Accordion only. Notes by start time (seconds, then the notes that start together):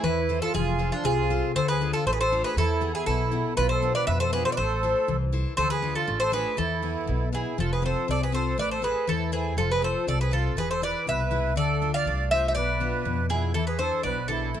0.04 E4
0.42 F4
0.56 F4
0.93 D4
1.06 F4
1.56 A4
1.69 G#4
1.94 F4
2.07 A4
2.13 G#4
2.20 A4
2.44 G#4
2.57 E4
2.94 E4
3.07 E4
3.58 F4
3.71 A4
3.95 B4
4.08 B4
4.20 A4
4.33 G#4
4.45 A4
4.53 B4
4.59 A4
5.59 A4
5.71 G#4
5.96 F4
6.20 A4
6.33 G#4
6.58 E4
7.35 E4
7.60 F4
7.72 G#4
7.84 A4
8.09 A4
8.22 G#4
8.34 A4
8.59 B4
8.71 A4
8.84 G#4
9.09 E4
9.34 E4
9.58 F4
9.71 G#4
9.82 A4
10.07 A4
10.21 G#4
10.33 F4
10.59 G#4
10.71 A4
10.83 B4
11.09 B4
11.58 A4
11.95 D5
12.31 C5
12.50 C5
12.57 B4
13.31 E4
13.55 E4
13.68 G#4
13.80 A4
14.06 B4
14.29 E4